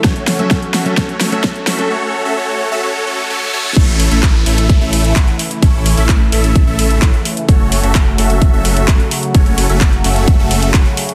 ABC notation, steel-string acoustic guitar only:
X:1
M:4/4
L:1/16
Q:1/4=129
K:A
V:1 name="Steel-string acoustic guitar"
[F,A,CA] z2 [F,A,Cc]4 [F,A,CA] [F,A,CA] z2 [F,A,Cc]4 [F,A,CA] | z16 | z16 | z16 |
z16 | z16 |]